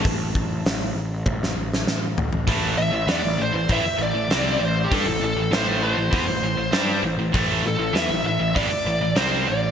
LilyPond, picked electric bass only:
\new Staff \with { instrumentName = "Picked electric bass" } { \clef bass \time 4/4 \key a \minor \tempo 4 = 99 a,,8 a,,8 a,,8 a,,8 a,,8 a,,8 a,,8 a,,8 | a,,8 a,,16 a,,16 e,16 a,,16 a,,16 a,,16 a,,16 r16 a,,16 a,,16 c,8 a,,8 | g,16 a,,16 a,,16 a,,16 a,,8. a,,16 e,16 a,,16 a,,16 a,,16 g,8 a,,16 a,,16 | a,,8 a,,16 a,,16 e,16 a,,16 a,,16 a,,16 a,,16 r16 a,,16 a,,16 c,8 a,,8 | }